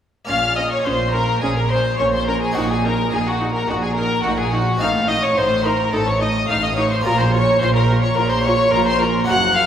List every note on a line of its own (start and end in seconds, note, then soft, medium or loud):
0.25 0.79 A#1 medium
0.25 2.50 A#3 medium
0.25 2.51 C#4 medium
0.25 2.51 F4 medium
0.25 0.55 F5 medium
0.25 0.55 F5 loud
0.25 0.55 F6 loud
0.29 0.79 A#2 medium
0.29 0.76 A#2 medium
0.29 0.37 C#4 medium
0.56 0.66 C#4 medium
0.56 0.62 D#5 loud
0.56 0.71 D#5 medium
0.56 0.71 D#6 loud
0.71 0.86 C#5 medium
0.71 0.85 C#5 medium
0.71 0.77 C#6 loud
0.84 1.36 A#1 medium
0.84 1.36 A#2 medium
0.84 1.33 A#2 medium
0.84 0.94 C#4 medium
0.84 1.15 C5 medium
0.84 1.14 C5 medium
0.84 1.13 C6 medium
1.12 1.22 C#4 medium
1.12 1.41 A#4 loud
1.12 1.41 A#4 medium
1.12 1.41 A#5 loud
1.41 1.92 A#1 loud
1.41 1.89 A#2 medium
1.41 1.93 A#2 medium
1.41 1.51 C#4 medium
1.41 1.57 G#4 medium
1.41 1.56 G#4 medium
1.41 1.55 G#5 loud
1.56 1.70 A#4 medium
1.56 1.71 A#4 medium
1.56 1.70 A#5 medium
1.70 1.80 C#4 medium
1.70 1.98 C5 loud
1.70 1.99 C5 medium
1.70 1.99 C6 loud
1.99 2.49 A#1 medium
1.99 2.49 A#2 medium
1.99 2.46 A#2 medium
1.99 2.08 C#4 medium
1.99 2.13 C#5 medium
1.99 2.05 C#5 medium
1.99 2.05 C#6 loud
2.13 2.30 C5 medium
2.13 2.28 C5 medium
2.13 2.27 C6 loud
2.27 2.36 C#4 medium
2.27 2.41 A#4 medium
2.27 2.42 A#5 loud
2.41 2.55 G#4 medium
2.41 2.57 G#4 medium
2.41 2.56 G#5 medium
2.51 4.75 C4 medium
2.51 4.75 D#4 medium
2.51 4.76 F#4 medium
2.51 2.69 F#4 medium
2.56 3.05 A#1 medium
2.56 3.02 A#2 medium
2.56 3.05 A#2 medium
2.56 2.64 D#4 medium
2.56 2.70 F#5 loud
2.70 2.87 G#4 medium
2.70 2.84 G#4 medium
2.70 2.84 G#5 loud
2.84 2.93 D#4 medium
2.84 3.11 A#4 medium
2.84 3.12 A#4 medium
2.84 3.12 A#5 loud
3.12 3.62 A#1 medium
3.12 3.59 A#2 medium
3.12 3.62 A#2 medium
3.12 3.20 D#4 medium
3.12 3.26 G#4 medium
3.12 3.18 G#4 medium
3.12 3.27 G#5 loud
3.26 3.54 F#4 medium
3.26 3.53 F#4 medium
3.26 3.55 F#5 medium
3.40 3.48 D#4 medium
3.54 3.70 A#4 medium
3.54 3.68 A#4 medium
3.54 3.69 A#5 medium
3.67 4.18 A#1 loud
3.67 4.14 A#2 medium
3.67 4.18 A#2 medium
3.67 3.76 D#4 medium
3.67 3.82 F#4 medium
3.67 3.84 F#4 medium
3.67 3.75 F#5 loud
3.83 3.95 G#4 medium
3.83 3.96 G#4 medium
3.83 3.96 G#5 medium
3.96 4.05 D#4 medium
3.96 4.23 A#4 loud
3.96 4.24 A#4 loud
3.96 4.24 A#5 loud
4.24 4.74 A#1 medium
4.24 4.71 A#2 medium
4.24 4.74 A#2 medium
4.24 4.33 D#4 medium
4.24 4.29 F#4 medium
4.24 4.38 F#4 medium
4.24 4.38 F#5 loud
4.37 4.43 G#4 medium
4.37 4.52 G#4 medium
4.37 4.52 G#5 loud
4.52 4.60 D#4 medium
4.52 4.82 F#4 medium
4.52 4.81 F#4 medium
4.52 4.81 F#5 loud
4.77 7.00 C4 medium
4.77 7.00 D#4 medium
4.77 7.01 F4 medium
4.77 5.10 F5 loud
4.77 4.89 F5 loud
4.77 4.89 F6 loud
4.81 5.31 A1 medium
4.81 5.31 A2 medium
4.81 5.28 A2 medium
4.81 4.89 D#4 medium
5.08 5.17 D#4 medium
5.08 5.22 D#5 loud
5.08 5.24 D#5 loud
5.08 5.23 D#6 loud
5.22 5.28 C#5 medium
5.22 5.39 C#5 loud
5.22 5.37 C#6 loud
5.37 5.87 A1 medium
5.37 5.87 A2 medium
5.37 5.84 A2 medium
5.37 5.45 D#4 medium
5.37 5.65 C5 loud
5.37 5.66 C5 medium
5.37 5.65 C6 loud
5.64 5.73 D#4 medium
5.64 5.92 A#4 medium
5.64 5.94 A#4 loud
5.64 5.94 A#5 loud
5.92 6.43 A1 loud
5.92 6.40 A2 medium
5.92 6.43 A2 medium
5.92 6.01 D#4 medium
5.92 5.98 A4 loud
5.92 6.07 A4 loud
5.92 6.07 A5 loud
6.07 6.21 C#5 medium
6.07 6.22 C#5 medium
6.07 6.22 C#6 loud
6.20 6.29 D#4 medium
6.20 6.48 D#5 medium
6.20 6.50 D#6 loud
6.48 6.99 A1 medium
6.48 6.99 A2 medium
6.48 6.96 A2 medium
6.48 6.57 D#4 medium
6.48 6.62 F5 medium
6.48 6.63 F5 medium
6.48 6.64 F6 loud
6.61 6.76 D#5 medium
6.61 6.69 D#5 medium
6.61 6.78 D#6 loud
6.76 6.85 D#4 medium
6.76 6.90 C#5 medium
6.76 6.89 C#5 medium
6.76 6.92 C#6 loud
6.90 7.04 C5 medium
6.90 7.06 C6 loud
7.01 7.55 A#2 medium
7.01 9.23 A#3 medium
7.01 9.24 C#4 medium
7.01 9.24 F4 medium
7.01 7.19 A#4 loud
7.05 7.55 A#1 loud
7.05 7.52 A#2 medium
7.05 7.14 F4 medium
7.05 7.19 A#5 loud
7.18 7.33 C5 medium
7.18 7.32 C5 medium
7.18 7.33 C6 loud
7.32 7.42 F4 medium
7.32 7.61 C#5 loud
7.32 7.61 C#6 loud
7.59 8.11 A#1 loud
7.59 8.11 A#2 medium
7.59 8.08 A#2 medium
7.59 7.70 F4 medium
7.59 7.73 C5 loud
7.59 7.75 C5 loud
7.59 7.67 C6 loud
7.74 8.01 A#4 medium
7.74 8.03 A#4 loud
7.74 7.84 A#5 loud
7.90 7.98 F4 medium
8.01 8.07 C#5 loud
8.01 8.17 C#5 medium
8.01 8.17 C#6 loud
8.15 8.67 A#1 loud
8.15 8.66 A#2 loud
8.15 8.64 A#2 medium
8.15 8.26 F4 medium
8.15 8.31 A#4 loud
8.15 8.30 A#4 medium
8.15 8.31 A#5 loud
8.29 8.44 C5 loud
8.29 8.45 C5 medium
8.29 8.45 C6 loud
8.43 8.54 F4 medium
8.43 8.72 C#5 loud
8.43 8.73 C#6 loud
8.71 9.22 A#1 medium
8.71 9.22 A#2 loud
8.71 9.20 A#2 medium
8.71 8.82 F4 medium
8.71 8.84 A#4 loud
8.71 8.86 A#4 medium
8.71 8.87 A#5 loud
8.85 9.01 C5 loud
8.85 9.00 C5 medium
8.85 9.01 C6 loud
8.99 9.10 F4 medium
8.99 9.25 A#4 loud
8.99 9.29 A#4 medium
8.99 9.10 A#5 loud
9.24 9.66 A#3 medium
9.24 9.66 C#4 medium
9.24 9.66 F#4 medium
9.24 9.34 F#5 loud
9.24 9.56 F#5 loud
9.29 9.66 F#1 loud
9.29 9.66 F#2 medium
9.29 9.66 F#2 loud
9.29 9.38 F#4 medium
9.29 9.57 F#6 loud
9.54 9.66 F#4 medium
9.54 9.66 F5 loud
9.54 9.66 F6 loud